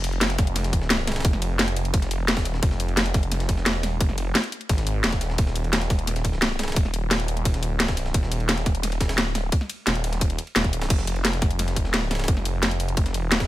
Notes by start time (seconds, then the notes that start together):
Already playing: F1
0.04 closed hi-hat, ride
0.13 ride
0.21 snare, closed hi-hat, ride
0.30 snare, closed hi-hat
0.38 kick, snare, closed hi-hat, ride
0.47 closed hi-hat
0.56 snare, closed hi-hat, ride
0.64 snare, closed hi-hat
0.73 kick, closed hi-hat, ride
0.82 snare
0.90 snare, closed hi-hat, ride
0.99 snare
1.07 snare, closed hi-hat, ride
1.12 snare, ride
1.16 snare, ride
1.20 snare, ride
1.25 F1, kick, closed hi-hat, ride
1.33 snare
1.42 closed hi-hat, ride
1.59 snare, closed hi-hat, ride
1.68 closed hi-hat
1.76 closed hi-hat, ride
1.85 closed hi-hat
1.94 kick, closed hi-hat, ride
2.02 snare, closed hi-hat
2.11 closed hi-hat, ride
2.21 E1
2.28 snare, closed hi-hat, ride
2.37 kick, snare, ride
2.45 D#1, snare, closed hi-hat, ride
2.54 snare
2.63 F1, kick, closed hi-hat, ride
2.71 snare
2.80 closed hi-hat, ride
2.88 ride
2.97 snare, closed hi-hat, ride
3.06 snare, closed hi-hat
3.14 kick, snare, closed hi-hat, ride
3.23 closed hi-hat
3.31 snare, closed hi-hat, ride
3.40 snare, closed hi-hat
3.49 kick, closed hi-hat, ride
3.57 E1, snare
3.66 snare, closed hi-hat, ride
3.75 snare
3.83 D#1, snare, closed hi-hat, ride
4.00 F1, kick, closed hi-hat, ride
4.09 snare
4.18 closed hi-hat, ride
4.35 snare, closed hi-hat, ride
4.44 closed hi-hat
4.52 closed hi-hat
4.61 closed hi-hat
4.69 G#1, kick, closed hi-hat, ride
4.78 snare, closed hi-hat
4.87 closed hi-hat, ride
5.04 D#1, snare, closed hi-hat, ride
5.12 kick, snare, closed hi-hat
5.21 snare, closed hi-hat, ride
5.30 snare
5.38 D#1, kick, closed hi-hat, ride
5.47 snare
5.56 closed hi-hat, ride
5.64 ride
5.73 snare, closed hi-hat, ride
5.81 snare, closed hi-hat
5.90 kick, snare, closed hi-hat, ride
5.99 closed hi-hat
6.07 snare, closed hi-hat, ride
6.16 snare, closed hi-hat
6.25 kick, closed hi-hat, ride
6.33 snare
6.42 snare, closed hi-hat, ride
6.51 snare
6.59 snare, closed hi-hat, ride
6.63 snare, ride
6.68 snare, ride
6.72 snare, ride
6.76 D#1, kick, closed hi-hat, ride
6.85 snare
6.94 closed hi-hat, ride
7.11 snare, closed hi-hat, ride
7.20 closed hi-hat
7.28 closed hi-hat, ride
7.37 closed hi-hat
7.45 kick, closed hi-hat, ride
7.54 snare, closed hi-hat
7.63 closed hi-hat, ride
7.75 C#1
7.80 snare, closed hi-hat, ride
7.88 kick, snare, ride
7.97 B0, snare, closed hi-hat, ride
8.06 snare
8.14 D#1, kick, closed hi-hat, ride
8.23 snare
8.32 closed hi-hat, ride
8.40 ride
8.49 snare, closed hi-hat, ride
8.57 snare, closed hi-hat
8.66 kick, snare, closed hi-hat, ride
8.75 closed hi-hat
8.83 snare, closed hi-hat, ride
8.92 snare, closed hi-hat
9.01 kick, snare, closed hi-hat, ride
9.09 D1, snare, ride
9.18 snare, closed hi-hat, ride
9.26 snare
9.35 C#1, snare, closed hi-hat, ride
9.52 kick, closed hi-hat, ride
9.61 snare
9.69 closed hi-hat, ride
9.87 D#1, snare, closed hi-hat, ride
9.95 closed hi-hat
10.04 closed hi-hat, ride
10.13 snare, closed hi-hat
10.21 kick, closed hi-hat, ride
10.30 closed hi-hat
10.38 closed hi-hat, ride
10.47 ride
10.56 D#1, snare, closed hi-hat, ride
10.64 kick, closed hi-hat
10.73 closed hi-hat, ride
10.81 snare, ride
10.90 F1, kick, closed hi-hat, ride, crash
10.99 snare
11.07 closed hi-hat, ride
11.16 ride
11.25 snare, closed hi-hat, ride
11.33 snare, closed hi-hat
11.42 kick, snare, closed hi-hat, ride
11.51 closed hi-hat
11.59 snare, closed hi-hat, ride
11.68 snare, closed hi-hat
11.76 kick, closed hi-hat, ride
11.85 snare
11.89 D#1
11.94 snare, closed hi-hat, ride
12.02 snare
12.11 C#1, snare, closed hi-hat, ride
12.15 snare, ride
12.19 snare, ride
12.24 snare, ride
12.28 F1, kick, closed hi-hat, ride
12.37 snare
12.45 closed hi-hat, ride
12.62 snare, closed hi-hat, ride
12.71 closed hi-hat
12.80 closed hi-hat, ride
12.88 closed hi-hat
12.97 kick, closed hi-hat, ride
13.06 snare, closed hi-hat
13.14 closed hi-hat, ride
13.27 D#1
13.32 snare, closed hi-hat, ride
13.40 kick, snare, ride